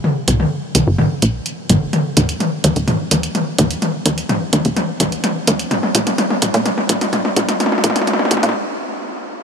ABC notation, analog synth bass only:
X:1
M:4/4
L:1/16
Q:1/4=127
K:Cdor
V:1 name="Analog synth bass" clef=bass
z2 C,, z3 C,, G,,, z2 B,,, z3 G,,, z | z2 E,, z3 E,, E,,, z2 E,, z3 E,, z | z2 E,, z3 E,, E,,, z2 E,, z3 E,, z | z2 B,,, z3 B,,, B,, z2 B,,, z3 B,,, z |
z2 B,,, z3 B,,, B,, z8 |]